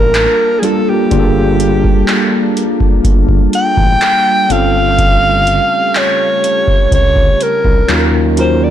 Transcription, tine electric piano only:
0.62 1.04 G3 medium
0.62 1.04 A#3 medium
0.62 1.04 D4 medium
0.62 1.04 F4 medium
0.62 1.05 A4 medium
1.10 2.75 G3 medium
1.10 2.75 A#3 medium
1.10 2.75 D4 medium
1.10 2.76 F4 medium
1.10 1.19 G#4 medium
1.19 2.79 A4 medium
4.49 6.14 G3 medium
4.49 6.14 C4 medium
4.49 6.14 C#4 medium
4.49 6.14 F4 medium
4.49 6.15 A4 medium
7.88 8.29 F#3 medium
7.88 8.30 C#4 medium
7.88 8.30 D#4 medium
7.88 8.30 F4 medium
7.88 8.31 A#4 medium
8.37 8.70 F#3 medium
8.37 8.70 C#4 medium
8.37 8.70 D#4 medium
8.37 8.70 F4 medium
8.37 8.70 A#4 medium

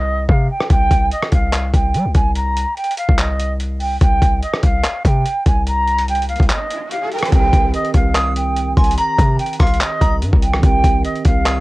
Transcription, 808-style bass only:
0.00 0.27 C2 loud
0.29 0.49 C3 loud
0.70 0.90 C2 loud
0.91 1.11 C2 loud
1.32 1.72 C2 loud
1.74 1.96 C2 loud
1.94 2.07 G3 loud
2.05 2.14 C2 loud
2.15 2.65 C2 loud
3.09 3.98 C2 loud
4.01 4.21 C2 loud
4.22 4.42 C2 loud
4.63 4.83 C2 loud
5.05 5.25 C3 loud
5.46 6.36 C2 loud
6.40 6.49 C2 loud
7.32 7.52 C2 loud
7.53 7.73 C2 loud
7.94 8.74 C2 loud
8.77 8.97 C2 loud
9.18 9.38 C3 loud
9.60 9.80 C2 loud
10.01 10.23 C2 loud
10.22 10.32 G2 loud
10.33 10.62 C2 loud
10.63 10.83 C2 loud
10.84 11.04 C2 loud
11.25 11.60 C2 loud

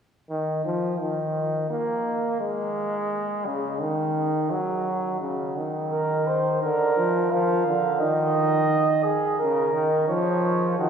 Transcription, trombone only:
0.30 0.62 D#3 medium
0.65 1.02 F3 medium
1.00 1.70 D#3 medium
1.70 2.39 A#3 medium
2.41 3.47 G#3 medium
3.46 3.82 C#3 medium
3.81 4.52 D#3 medium
4.51 5.20 F#3 medium
5.21 5.58 C#3 medium
5.57 6.62 D#3 medium
6.62 6.96 D3 medium
6.97 7.31 F3 medium
7.32 7.66 F3 medium
7.67 8.02 D3 medium
8.01 9.12 D#3 medium
9.40 9.72 C#3 medium
9.74 10.07 D#3 medium
10.08 10.77 F3 medium
10.78 10.89 D#3 medium

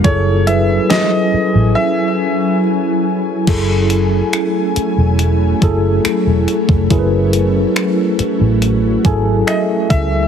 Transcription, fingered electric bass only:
0.05 0.78 F#1 loud
1.34 muted fingered electric bass stroke soft
1.55 1.73 A1 medium
3.48 4.21 F#1 loud
4.76 muted fingered electric bass stroke soft
4.98 5.52 E1 medium
5.62 5.98 F#1 medium
6.05 muted fingered electric bass stroke soft
6.27 6.45 E1 medium
6.69 6.87 F1 medium
6.91 7.64 F#1 loud
8.19 muted fingered electric bass stroke soft
8.41 8.95 A1 medium
9.05 9.41 G#1 medium
9.91 10.27 C#2 medium

